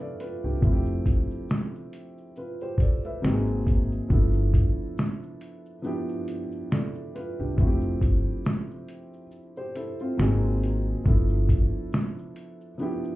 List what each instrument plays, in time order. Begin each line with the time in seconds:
Already playing: felt piano F3 B3 D4 E4 F#4 G4 B4 F5
0.01 felt piano A4 D5
0.20 felt piano F4 B4, closed hi-hat, shaker
0.44 upright bass C2, felt piano D4 G4
0.61 upright bass F1, felt piano F3 A3 C4 E4, kick, shaker
0.66 felt piano F4
0.72 felt piano G4
0.86 shaker
1.06 upright bass G1, kick, closed hi-hat, shaker
1.31 shaker
1.49 finger snap, snare, shaker
1.75 shaker
1.93 closed hi-hat, shaker
2.18 shaker
2.36 felt piano F4 B4, shaker
2.61 felt piano G4 C5, shaker
2.78 felt piano A4 D5, kick, closed hi-hat, shaker
3.04 felt piano B4 E5, shaker
3.22 upright bass G#1, felt piano F#3 A#3 C4 D#4, finger snap, snare, shaker
3.26 felt piano G4
3.33 felt piano G#4
3.47 shaker
3.67 kick, closed hi-hat, shaker
3.92 shaker
4.08 upright bass G1, felt piano F3 B3 D4 E4, kick, shaker
4.13 felt piano A4
4.34 shaker
4.54 kick, closed hi-hat, shaker
4.97 finger snap, snare, shaker
5.23 shaker
5.41 closed hi-hat, shaker
5.66 shaker
5.82 felt piano F3 B3 D4 E4, shaker
5.87 felt piano G4
6.09 shaker
6.28 closed hi-hat, shaker
6.52 shaker
6.71 felt piano A4 D5, finger snap, snare, shaker
6.95 shaker
7.15 felt piano F4 B4, closed hi-hat, shaker
7.40 upright bass C2, felt piano D4 G4
7.56 upright bass F1, felt piano F3 A3 C4 E4, kick, shaker
7.61 felt piano F#4
7.67 felt piano G4
7.81 shaker
8.01 upright bass G1, kick, closed hi-hat, shaker
8.45 finger snap, snare, shaker
8.71 shaker
8.88 closed hi-hat, shaker
9.13 shaker
9.31 shaker
9.56 felt piano G4 C5, shaker
9.75 felt piano E4 A4, closed hi-hat, shaker
9.99 felt piano C4 F4, shaker
10.17 upright bass G#1, felt piano F#3 A#3 C4 D#4, finger snap, snare, shaker
10.22 felt piano G#4
10.42 shaker
10.63 closed hi-hat, shaker
11.04 upright bass G1, felt piano F3 B3 D4 E4, kick, shaker
11.09 felt piano A4
11.29 shaker
11.49 kick, closed hi-hat, shaker
11.92 finger snap, snare, shaker
12.18 shaker
12.36 closed hi-hat, shaker
12.61 shaker
12.78 felt piano F3 B3 D4 E4, shaker
12.82 felt piano G4
13.04 shaker